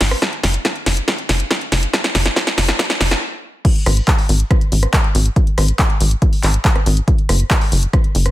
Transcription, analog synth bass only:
0.01 G#1
0.43 F#1
0.86 F#1
1.29 F#1
1.72 F#1
2.15 F#1
2.58 F#1
3.01 F#1
3.86 G#1
4.29 G#1
4.72 G#1
5.15 G#1
5.58 G#1
6.01 G#1
6.43 G#1
6.86 G#1
7.29 F#1
7.72 F#1
8.15 F#1

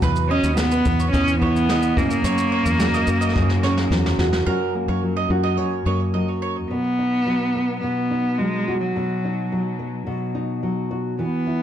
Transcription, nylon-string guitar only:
Already playing: F#3 F#4
0.58 B3
0.86 B3
1.13 E3
1.42 E4
1.68 B3
1.97 F#2
2.24 F#2
2.79 F#3
3.07 A#3
3.36 F#2
3.64 C#4
3.92 F#3
4.19 F#4
4.48 F#2 F#4
4.75 A#3
5.03 F#3
5.31 F#4
5.58 F#2
5.87 A#3
6.14 F#3
6.71 B2
6.99 D#4
7.26 F#3
7.55 B3
7.83 B2
8.11 D#4
8.39 F#3
8.68 F#4
8.96 B2
9.25 D#4
9.52 F#3
9.79 B3
10.07 B2
10.35 D#4
10.63 F#3
10.91 F#4
11.19 E3
11.47 E4

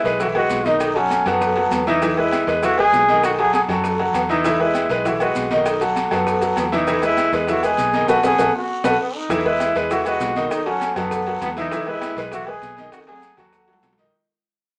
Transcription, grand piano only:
0.05 G#3 G#4 B4
0.20 E3 E4 E5
0.35 G#3 G#4 B4
0.66 D#3 D#4 D#5
0.96 F#3 F#4 A4
1.26 F#3 F#4 A4
1.57 F#3 F#4 A4
1.87 E3 E4 E5
2.02 E3 E4 E5
2.18 G#3 G#4 B4
2.48 G#3 G#4 B4
2.63 E3 E4 E5
2.78 G#3 G#4 B4
3.09 D#3 D#4 D#5
3.39 F#3 F#4 A4
3.69 F#3 F#4 A4
3.99 F#3 F#4 A4
4.30 E3 E4 E5
4.45 E3 E4 E5
4.60 G#3 G#4 B4
4.90 G#3 G#4 B4
5.05 E3 E4 E5
5.21 G#3 G#4 B4
5.51 D#3 D#4 D#5
5.81 F#3 F#4 A4
6.11 F#3 F#4 A4
6.41 F#3 F#4 A4
6.72 E3 E4 E5
6.87 E3 E4 E5
7.03 G#3 G#4 B4
7.33 G#3 G#4 B4
7.49 E3 E4 E5
7.64 G#3 G#4 B4
7.94 D#3 D#4 D#5
8.09 F#4 A4 B4
8.24 F#4 A4 B4
8.39 F#4 A4 B4
8.85 F#4 A4 B4
9.30 E3 E4 E5
9.45 G#3 G#4 B4
9.76 G#3 G#4 B4
9.91 E3 E4 E5
10.06 G#3 G#4 B4
10.36 D#3 D#4 D#5
10.66 F#3 F#4 A4
10.97 F#3 F#4 A4
11.27 F#3 F#4 A4
11.57 E3 E4 E5
11.73 E3 E4 E5
11.88 G#3 G#4 B4
12.18 G#3 G#4 B4
12.32 E3 E4 E5
12.48 G#3 G#4 B4
12.78 D#3 D#4 D#5
13.07 F#3 A3 F#4
13.38 F#3 F#4 A4
13.68 F#3 F#4 A4
13.98 D#3 D#4 D#5

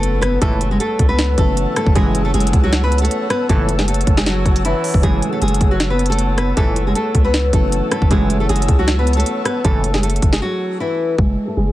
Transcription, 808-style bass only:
Already playing: F#1
0.42 F#1
0.99 C#2
1.38 F#1
1.87 F#1
1.96 F#1
2.34 F#1
2.53 C#2
3.49 F#1
4.07 F#1
4.46 F#1
4.94 F#1
5.03 F#1
5.42 F#1
5.61 F#1
6.57 F#1
7.15 C#2
7.53 F#1
8.02 F#1
8.11 F#1
8.49 F#1
8.69 C#2
9.65 F#1
10.22 F#1
11.18 F#1
11.57 F#1

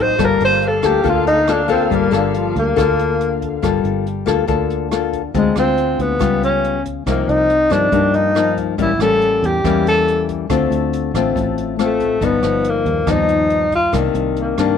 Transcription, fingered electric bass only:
Already playing: A1
0.19 G1
0.41 G1
0.83 D2
1.04 D2
1.91 G1
2.12 G1
2.56 D2
2.77 D2
3.63 G1
3.84 G1
4.27 D2
4.49 D2
5.34 D2
5.56 D2
5.99 D2
6.20 C#2
7.06 C2
7.28 C2
7.71 G2
7.92 G2
8.78 A1
8.98 A1
9.43 E2
9.64 E2
10.50 D2
10.70 D2
11.14 A1
11.36 A1
12.21 G1
12.43 G1
12.85 D#2
13.07 D#2
13.93 C2
14.14 C2
14.58 G2

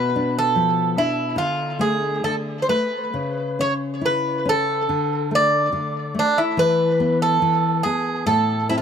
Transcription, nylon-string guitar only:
Already playing: B2
0.16 D4
0.56 F3
0.97 D4
1.36 D3
1.79 A3
2.24 D3
2.69 A3
3.14 C#3
3.59 C#4
4.01 E4
4.45 C#4
4.89 D3
5.31 A3
5.73 D3
6.15 A3
6.57 E3
7.00 B3
7.42 E3
7.85 B3
8.26 A2
8.70 C4

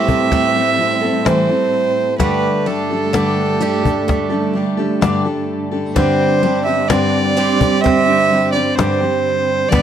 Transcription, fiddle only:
Already playing: E5
1.25 C5
2.18 B4
2.66 A4
5.95 C5
6.65 E5
6.88 D5
7.81 E5
8.52 D5
8.75 C5
9.69 D5

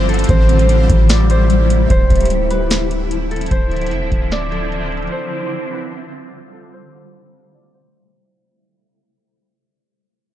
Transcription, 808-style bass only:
Already playing: G1
0.29 A1
0.90 A1
1.90 D1
2.10 D1
3.51 D1
3.91 F1
4.01 D1
4.12 D1

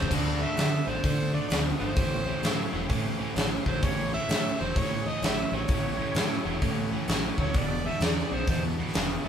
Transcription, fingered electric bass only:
0.10 D2
0.58 D3
0.87 A1
1.04 D3
1.50 D2
1.80 G1
1.96 A1
2.43 A2
2.73 E1
2.89 A2
3.35 A1
3.66 A1
3.83 A1
4.29 A2
4.60 E1
4.76 A2
5.22 A1
5.52 A1
5.68 A1
6.15 A2
6.45 E1
6.62 A2
7.08 A1
7.38 D2
7.55 E1
8.00 E2
8.31 B1
8.48 E2
8.95 E1
9.24 E1

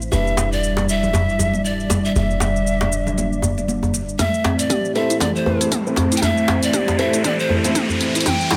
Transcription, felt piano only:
0.12 G3 D4 E4 B4
4.95 A3 C4 E4 C5
5.46 A3 C4 E4 C5
5.87 A3 C4 E4 C5
6.99 A3 C4 E4 C5
7.50 A3 C4 E4 C5
7.64 A3 C4 E4 E5

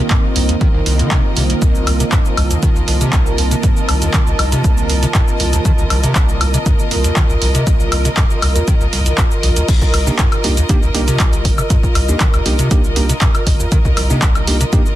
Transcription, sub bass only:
0.36 C2
0.86 C2
1.37 C2
1.87 C2
2.37 C2
2.88 C2
3.38 C2
3.89 C2
4.39 C2
4.89 C2
5.40 C2
5.90 C2
6.41 C2
6.91 C2
7.42 C2
7.92 C2
8.42 C2
8.93 C2
9.43 A#1
9.94 C2
10.44 C2
10.95 C2
11.45 G1
11.95 C2
12.46 C2
12.96 C2
13.47 G1
13.97 C2
14.47 C2

